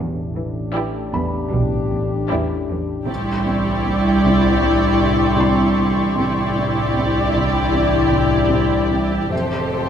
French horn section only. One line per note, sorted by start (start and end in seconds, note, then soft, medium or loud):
0.00 3.04 D4 medium
0.00 3.04 G4 medium
3.08 6.16 D4 medium
3.08 6.16 E4 medium
6.18 9.13 D4 medium
6.18 9.13 E4 medium
9.30 9.89 A3 medium
9.30 9.89 G4 medium